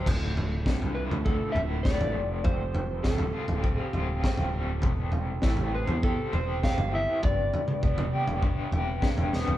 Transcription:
0.06 picked electric bass D1, overdriven electric guitar D2, transistor combo organ F3 D4 E4 A4, kick, floor tom, crash
0.37 floor tom
0.66 picked electric bass C2, overdriven electric guitar D3, kick, snare
0.82 floor tom
0.95 overdriven electric guitar E4, electric slide guitar B4
1.11 picked electric bass D2, floor tom
1.24 overdriven electric guitar A3, electric slide guitar A4, kick
1.52 picked electric bass D1, overdriven electric guitar E4, electric slide guitar E5, floor tom
1.83 overdriven electric guitar A3, electric slide guitar D5, kick, snare
2.00 picked electric bass A1, floor tom
2.14 picked electric bass F1, overdriven electric guitar F2, transistor combo organ C4 G4
2.44 overdriven electric guitar F2, electric slide guitar C5, kick, floor tom
2.75 floor tom
3.03 picked electric bass D1, overdriven electric guitar G3, electric slide guitar A4, kick, snare
3.18 floor tom
3.33 overdriven electric guitar F4
3.48 picked electric bass D1, floor tom
3.63 overdriven electric guitar C4, kick
3.83 electric slide guitar G4
3.93 picked electric bass D1, overdriven electric guitar F4, floor tom
4.23 overdriven electric guitar C4, kick, snare
4.37 picked electric bass D1, floor tom
4.53 overdriven electric guitar G3
4.82 picked electric bass E1, overdriven electric guitar C3, transistor combo organ E3 G4, kick, floor tom
5.12 floor tom
5.42 picked electric bass A1, overdriven electric guitar E4, kick, snare
5.57 floor tom
5.74 electric slide guitar B4, overdriven electric guitar C5
5.87 picked electric bass E2, floor tom
6.03 overdriven electric guitar G4, electric slide guitar A4, kick
6.32 picked electric bass E1, overdriven electric guitar C5, electric slide guitar C5, floor tom
6.63 overdriven electric guitar G4, electric slide guitar F5, kick, snare
6.78 picked electric bass G1, floor tom
6.93 overdriven electric guitar E4, electric slide guitar E5
7.22 picked electric bass G1, overdriven electric guitar G2, transistor combo organ B3 D4 B4, electric slide guitar D5, kick, floor tom
7.54 floor tom
7.68 mid tom
7.83 picked electric bass E1, overdriven electric guitar B3, kick
7.98 floor tom, mid tom
8.13 overdriven electric guitar G4
8.27 picked electric bass E1, floor tom
8.43 overdriven electric guitar D4, kick
8.72 picked electric bass E1, overdriven electric guitar G4, floor tom
9.02 overdriven electric guitar D4, kick, snare
9.17 picked electric bass E1, floor tom
9.32 picked electric bass E1, overdriven electric guitar B3, snare
9.48 picked electric bass D1, floor tom

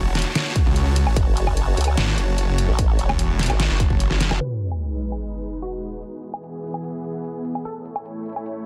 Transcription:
Already playing: detuned saw bass E1, supersaw synth F#4 C#5 A5
0.15 snare, closed hi-hat
0.19 closed hi-hat
0.22 closed hi-hat
0.35 snare, closed hi-hat
0.56 kick, closed hi-hat
0.66 detuned saw bass C#2
0.76 closed hi-hat
0.96 closed hi-hat
1.07 detuned saw bass A1, low woodblock
1.16 wobble bass F#1, kick, closed hi-hat
1.37 closed hi-hat
1.47 kick, low woodblock
1.57 closed hi-hat
1.77 wobble bass C#2, closed hi-hat
1.81 closed hi-hat
1.84 closed hi-hat, low woodblock
1.98 detuned saw bass G#1, snare, closed hi-hat
2.18 detuned saw bass F#1, closed hi-hat
2.38 closed hi-hat
2.49 detuned saw bass F#1
2.58 closed hi-hat
2.69 wobble bass A1
2.79 kick, closed hi-hat
2.99 closed hi-hat
3.09 detuned saw bass E1, kick, low woodblock
3.19 closed hi-hat
3.39 snare, closed hi-hat
3.43 closed hi-hat
3.46 wobble bass G#1, closed hi-hat
3.50 closed hi-hat, low woodblock
3.60 snare, closed hi-hat
3.70 detuned saw bass F#1
3.80 kick, closed hi-hat
3.90 kick
4.00 closed hi-hat
4.11 snare
4.21 snare, closed hi-hat
4.31 wobble bass F#1, snare, low woodblock
4.41 supersaw synth G#3 D#4 B4, synth pluck B4, closed hi-hat, sub drop
4.61 closed hi-hat
4.72 low woodblock
4.81 closed hi-hat
5.02 closed hi-hat
5.05 closed hi-hat
5.08 closed hi-hat, low woodblock
5.22 closed hi-hat
5.42 closed hi-hat
5.62 synth pluck F#4, closed hi-hat
5.83 closed hi-hat
6.03 supersaw synth E3 B3 G#4, closed hi-hat
6.23 closed hi-hat
6.34 low woodblock
6.44 closed hi-hat
6.64 closed hi-hat
6.67 closed hi-hat
6.70 closed hi-hat
6.74 closed hi-hat, low woodblock
6.84 closed hi-hat
7.04 closed hi-hat
7.25 closed hi-hat
7.45 closed hi-hat
7.55 low woodblock
7.65 supersaw synth A3 E4 C#5, synth pluck A4, closed hi-hat
7.85 closed hi-hat
7.96 low woodblock
8.06 closed hi-hat
8.26 closed hi-hat
8.29 closed hi-hat
8.33 closed hi-hat, low woodblock
8.46 closed hi-hat

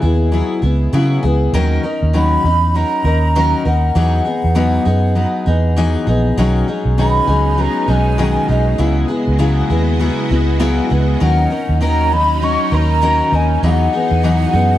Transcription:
0.02 fingered electric bass D#2, steel-string acoustic guitar B3 E4 G#4
0.32 steel-string acoustic guitar F#3 B3 E4 G#4
0.62 fingered electric bass C#2, steel-string acoustic guitar B3 E4 G#4
0.93 steel-string acoustic guitar C#3 F#3 B3 E4 G#4, fingered electric bass C#3
1.23 fingered electric bass C#2, steel-string acoustic guitar B3 E4 G#4
1.53 fingered electric bass D#2, steel-string acoustic guitar D#3 F#3 C#4 D#4 A#4
1.83 steel-string acoustic guitar C#4 D#4 A#4
2.03 fingered electric bass D#2
2.13 steel-string acoustic guitar D#3 F#3 C#4 D#4, flute B5
2.44 fingered electric bass E2, steel-string acoustic guitar C#4 D#4
2.74 steel-string acoustic guitar F#3 C#4 D#4 A#4, flute A#5
3.04 fingered electric bass D#2, steel-string acoustic guitar C#4 D#4 A#4
3.35 steel-string acoustic guitar D#3 F#3 C#4 D#4 A#4
3.65 fingered electric bass D#2, steel-string acoustic guitar C#4 D#4 A#4, flute F#5
3.95 fingered electric bass E2, steel-string acoustic guitar E3 F#3 B3 D#4 G#4
4.25 steel-string acoustic guitar B3 D#4 G#4
4.44 fingered electric bass E2
4.55 steel-string acoustic guitar E3 F#3 B3 D#4 G#4
4.85 fingered electric bass F#2, steel-string acoustic guitar B3 D#4 G#4
5.15 steel-string acoustic guitar F#3 B3 D#4 G#4
5.46 fingered electric bass E2, steel-string acoustic guitar B3 D#4 G#4
5.76 steel-string acoustic guitar E3 F#3 B3 D#4 G#4
6.07 fingered electric bass A#1, steel-string acoustic guitar B3 D#4 G#4
6.36 fingered electric bass B1, steel-string acoustic guitar B2 D#3 F#3 C#4 D#4 G#4, string machine G#3 B3 D#4
6.68 steel-string acoustic guitar F#3 C#4 D#4 G#4
6.85 fingered electric bass B1
6.98 steel-string acoustic guitar B2 D#3 F#3 C#4 D#4 G#4, flute B5
7.27 fingered electric bass C#2, steel-string acoustic guitar F#3 C#4 D#4 G#4
7.57 steel-string acoustic guitar F#3 C#4 D#4 G#4, flute A#5
7.88 fingered electric bass B1, steel-string acoustic guitar F#3 C#4 D#4 G#4, flute G#5
8.18 steel-string acoustic guitar B2 D#3 F#3 C#4 D#4 G#4
8.48 fingered electric bass B1, steel-string acoustic guitar F#3 C#4 D#4 G#4, flute D#5
8.78 fingered electric bass C#2, steel-string acoustic guitar C#3 F#3 B3 E4 G#4, string machine C#3 B3 E4 F#4 D#5
9.08 steel-string acoustic guitar B3 E4 G#4
9.28 fingered electric bass C#2
9.39 steel-string acoustic guitar C#3 F#3 B3 E4 G#4
9.70 fingered electric bass D#2, steel-string acoustic guitar B3 E4 G#4
9.99 steel-string acoustic guitar F#3 B3 E4 G#4
10.30 fingered electric bass C#2, steel-string acoustic guitar B3 E4 G#4
10.59 steel-string acoustic guitar C#3 F#3 B3 E4 G#4
10.90 fingered electric bass C#2, steel-string acoustic guitar B3 E4 G#4
11.20 fingered electric bass D#2, steel-string acoustic guitar D#3 F#3 C#4 D#4 A#4, string machine F#3 C#4 D#4, flute F#5
11.50 steel-string acoustic guitar C#4 D#4 A#4
11.69 fingered electric bass D#2
11.81 steel-string acoustic guitar D#3 F#3 C#4 D#4 A#4, flute A#5
12.12 steel-string acoustic guitar C#4 D#4, flute B5
12.41 steel-string acoustic guitar F#3 C#4 D#4 A#4, flute C#6
12.72 fingered electric bass D#2, steel-string acoustic guitar C#4 D#4 A#4, flute A#5
13.02 steel-string acoustic guitar D#3 F#3 C#4 D#4 A#4
13.32 fingered electric bass D#2, steel-string acoustic guitar C#4 D#4 A#4, flute G#5
13.63 fingered electric bass E2, steel-string acoustic guitar E3 F#3 B3 D#4 G#4, string machine E3 B3 D#4 F#4 G#4, flute F#5
13.93 steel-string acoustic guitar B3 D#4 G#4
14.11 fingered electric bass E2
14.23 steel-string acoustic guitar E3 F#3 B3 D#4 G#4
14.53 fingered electric bass F#2, steel-string acoustic guitar B3 D#4 G#4

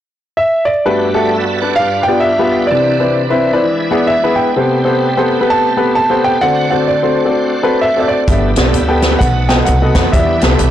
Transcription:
0.37 grand piano E5
0.65 grand piano D5
0.85 upright piano G2 A3 F#4 G4 B4, tonewheel organ G3 B3 F#4 A4
1.14 upright piano A3 F#4 G4 A4, tonewheel organ B4 D5
1.32 upright piano F#4 D5, tonewheel organ E5
1.61 upright piano D4 B4, tonewheel organ D5 F#5
1.76 upright piano G2, tonewheel organ G3 D4 F4 B4, grand piano F5
2.03 grand piano G5
2.08 upright piano B3 F4 G4 D5
2.20 grand piano E5
2.39 upright piano B3 F4 G4 B4
2.67 tonewheel organ E3 C4 D4 A4, upright piano C4 E4 B4, grand piano D5
2.71 upright piano C3 D5
2.76 tonewheel organ B4
3.00 upright piano C4 E4 B4 D5
3.30 upright piano C4 E4 B4 E5
3.53 upright piano C4 E4 B4 D5
3.63 upright piano E3, tonewheel organ G#3 D4 E4 B4
3.91 upright piano B3 E4 G#4 D5
4.07 grand piano E5
4.24 upright piano B3 E4 G#4 B4
4.36 grand piano G5
4.56 tonewheel organ C3 A3 B3 G4 B4, upright piano C3 B3 G4 A4 C5
4.62 tonewheel organ C4
4.85 upright piano B3 G4 A4 C5
5.17 upright piano B3 G4 A4 C5
5.41 upright piano B3 G4 A4 B4
5.50 grand piano A5
5.77 upright piano B3 G4 A4 B4
5.95 grand piano A5
6.09 upright piano B3 G4 A4 C5
6.24 grand piano G5
6.41 upright piano D3 C4 F#4 A4 D5, tonewheel organ A3 D4 F#4 C5, grand piano F#5
6.71 upright piano C4 F#4 A4 D5, grand piano F#5
6.88 grand piano D5
7.03 upright piano C4 F#4 A4 C5
7.25 upright piano C4 F#4 A4 D5
7.63 upright piano C4 F#4 A4 B4
7.81 grand piano E5
7.96 upright piano C4 F#4 A4 D5
8.00 grand piano E5
8.08 grand piano D5
8.27 upright bass G1, upright piano G2 B3 G4 A4 E5, tonewheel organ A3 E4 G4 A#4, kick, closed hi-hat
8.33 tonewheel organ B4
8.56 upright bass B1, upright piano B3 G4 A4 D5, snare, closed hi-hat
8.74 upright bass D2, closed hi-hat
8.88 upright piano B3 G4 A4 G5
9.02 snare, closed hi-hat
9.12 upright piano B3 G4 A4 B4
9.19 upright bass B1, upright piano B2, tonewheel organ A3 D4 F#4 B4, grand piano F#5, kick, closed hi-hat
9.26 tonewheel organ D#4
9.49 upright piano B3 F#4 A4 D#5, grand piano G5, snare, closed hi-hat
9.65 upright bass C2, grand piano F#5, closed hi-hat
9.82 upright piano B3 F#4 A4 D#5
9.95 upright bass F2, kick, snare, closed hi-hat
10.12 upright bass E2, upright piano E3 B3 E4 G4 D5, tonewheel organ G3 D4 E4 A#4, grand piano E5, kick, closed hi-hat
10.19 tonewheel organ B4
10.41 upright bass C2, upright piano B3 E4 G4 A4, snare, closed hi-hat
10.59 upright bass B1, closed hi-hat

